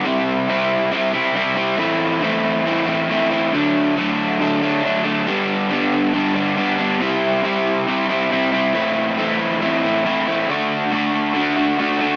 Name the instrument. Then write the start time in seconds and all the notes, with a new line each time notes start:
overdriven electric guitar
0.05 C3 G3 C4 E4
0.48 C3 G3 C4 E4
0.92 C3 G3 C4 E4
1.14 G3 C4 E4
1.35 C3 G3 C4 E4
1.56 G3 C4 E4
1.77 A2 E3 A3 C4 E4
2.22 E3 A3 C4 E4
2.65 A2 E3 A3 C4 E4
2.86 A3 C4 E4
3.09 E3 A3 C4 E4
3.31 A3 C4 E4
3.53 D3 F#3 A3 D4
3.96 D3 F#3 A3 D4
4.40 D3 F#3 A3 D4
4.61 F#3 A3 D4
4.83 D3 F#3 A3 D4
5.04 F#3 A3 D4
5.26 G2 D3 G3 B3 D4
5.70 D3 G3 B3 D4
6.13 G2 D3 G3 B3 D4
6.35 G3 B3 D4
6.57 D3 G3 B3 D4
6.78 G3 B3 D4
7.00 C3 G3 C4 E4
7.44 C3 G3 C4 E4
7.88 C3 G3 C4 E4
8.09 G3 C4 E4
8.30 C3 G3 C4 E4
8.52 G3 C4 E4
8.73 A2 E3 A3 C4 E4
9.17 E3 A3 C4 E4
9.61 A2 E3 A3 C4 E4
9.83 A3 C4 E4
10.05 E3 A3 C4 E4
10.27 A3 C4 E4
10.49 D3 A3 D4 F#4
10.91 D3 A3 D4 F#4
11.34 D3 A3 D4 F#4
11.56 A3 D4 F#4
11.78 D3 A3 D4 F#4
11.99 A3 D4 F#4